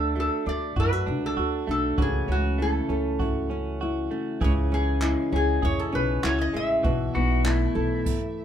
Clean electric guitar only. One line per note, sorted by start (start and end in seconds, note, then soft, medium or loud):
0.00 0.15 A3 medium
0.00 0.45 D4 medium
0.00 0.76 F#4 medium
0.16 1.67 A3 medium
0.46 1.05 D4 soft
0.76 1.37 F#4 medium
1.06 2.04 D4 medium
1.37 1.98 F#4 medium
1.67 2.58 A3 medium
1.98 4.40 E3 medium
1.98 3.18 F#4 medium
2.28 2.89 C#4 medium
2.58 4.10 A3 medium
2.89 3.49 C#4 medium
3.19 3.80 F#4 medium
3.50 4.71 C#4 medium
3.81 4.41 F#4 medium
4.11 4.47 A3 medium
4.41 6.83 E3 medium
4.41 5.61 G#4 medium
4.72 5.31 C#4 medium
5.02 6.52 G#3 medium
5.33 5.91 C#4 medium
5.62 6.23 G#4 medium
5.93 6.90 C#4 medium
6.23 6.39 F#4 medium
6.39 6.84 G#4 medium
6.54 6.90 G#3 medium
6.83 8.45 E3 medium
6.83 8.12 F#4 medium
7.14 7.76 E4 medium
7.45 8.45 A3 medium
7.76 8.45 E4 medium